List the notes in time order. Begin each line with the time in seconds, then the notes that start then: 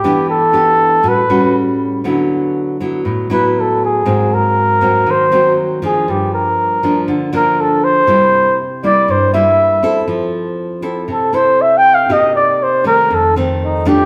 Already playing: G4
0.04 E3 B3 D4 G4
0.30 A4
0.53 B3 D4 G4
1.03 A2 G3 C#4 F#4
1.09 B4
1.30 G3 C#4 F#4
2.04 D3 F#3 B3 E4
2.80 F#3 B3 E4
3.05 A2
3.30 F#3 B3 E4 B4
3.60 A4
3.85 G#4
4.05 G#2 F#3 A#3 C4
4.34 A#4
4.81 F#3 A#3 C4
5.07 D#3
5.11 C5
5.32 F#3 A#3 C4
5.82 F3 A#3 D4 G#4
6.08 G2 G4
6.34 A#4
6.83 F3 A#3 D4
7.08 D3
7.33 F3 A#3 D4 A#4
7.61 A4
7.84 C5
8.07 C3 G3 A#3 E4
8.83 G3 A#3 E4 D5
9.08 G2 C5
9.34 G3 A#3 E4 E5
9.83 C4 E4 A4
10.08 F3
10.82 C4 E4 A4
11.08 C3 A4
11.33 C4 E4 A4 C5
11.61 E5
11.77 G5
11.95 F5
12.09 C3 A#3 D#4 G4 D#5
12.36 D5
12.63 C5
12.84 D#3 A3 C4 A#4
13.10 F2 A4
13.36 D#3 A3 C4
13.64 D#4
13.85 F3 A3 D4 G4